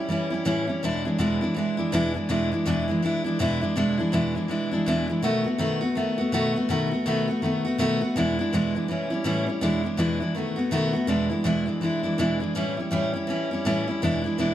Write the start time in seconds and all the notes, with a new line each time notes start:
0.09 E3 G3 C#4 E4
0.30 G3 C#4 E4
0.45 A2 E3 G3 C#4 E4
0.67 G3 C#4 E4
0.83 E2 B2 E3 G#3 D4 E4
1.05 E3 G#3 D4 E4
1.18 E2 B2 E3 G#3 D4 E4
1.41 E3 G#3 D4 E4
1.54 E3 G#3 D4 E4
1.77 E3 G#3 D4 E4
1.92 E2 B2 E3 G#3 D4 E4
2.14 E3 G#3 D4 E4
2.29 E2 B2 E3 G#3 D4 E4
2.52 E3 G#3 D4 E4
2.66 E2 B2 E3 G#3 D4 E4
2.88 E3 G#3 D4 E4
3.02 E3 G#3 D4 E4
3.24 E3 G#3 D4 E4
3.39 E2 B2 E3 G#3 D4 E4
3.61 E3 G#3 D4 E4
3.76 E2 B2 E3 G#3 D4 E4
3.97 E3 G#3 D4 E4
4.12 E2 B2 E3 G#3 D4 E4
4.35 E3 G#3 D4 E4
4.48 E3 G#3 D4 E4
4.71 E3 G#3 D4 E4
4.86 E2 B2 E3 G#3 D4 E4
5.08 E3 G#3 D4 E4
5.22 B2 D#3 A3 B3 F#4
5.44 A3 B3 F#4
5.58 B2 D#3 A3 B3 F#4
5.81 A3 B3 F#4
5.95 D#3 A3 B3 F#4
6.18 A3 B3 F#4
6.32 B2 D#3 A3 B3 F#4
6.54 A3 B3 F#4
6.69 B2 D#3 A3 B3 F#4
6.91 A3 B3 F#4
7.06 B2 D#3 A3 B3 F#4
7.28 A3 B3 F#4
7.42 D#3 A3 B3 F#4
7.65 A3 B3 F#4
7.78 B2 D#3 A3 B3 F#4
8.01 A3 B3 F#4
8.16 E2 B2 E3 G#3 D4 E4
8.39 E3 G#3 D4 E4
8.53 E2 B2 E3 G#3 D4 E4
8.75 E3 G#3 D4 E4
8.88 E3 G3 C#4 E4
9.10 G3 C#4 E4
9.24 A2 E3 G3 C#4 E4
9.46 G3 C#4 E4
9.61 E2 B2 E3 G#3 D4 E4
9.83 E3 G#3 D4 E4
9.97 E2 B2 E3 G#3 D4 E4
10.20 E3 G#3 D4 E4
10.35 D#3 A3 B3 F#4
10.56 A3 B3 F#4
10.71 B2 D#3 A3 B3 F#4
10.93 A3 B3 F#4
11.07 E2 B2 E3 G#3 D4 E4
11.30 E3 G#3 D4 E4
11.44 E2 B2 E3 G#3 D4 E4
11.66 E3 G#3 D4 E4
11.81 E3 G#3 D4 E4
12.03 E3 G#3 D4 E4
12.18 E2 B2 E3 G#3 D4 E4
12.40 E3 G#3 D4 E4
12.55 A2 E3 G3 C#4 E4
12.77 G3 C#4 E4
12.91 A2 E3 G3 C#4 E4
13.13 G3 C#4 E4
13.27 E3 G3 C#4 E4
13.51 G3 C#4 E4
13.65 A2 E3 G3 C#4 E4
13.87 G3 C#4 E4
14.02 E2 B2 E3 G#3 D4 E4
14.24 E3 G#3 D4 E4
14.38 E2 B2 E3 G#3 D4 E4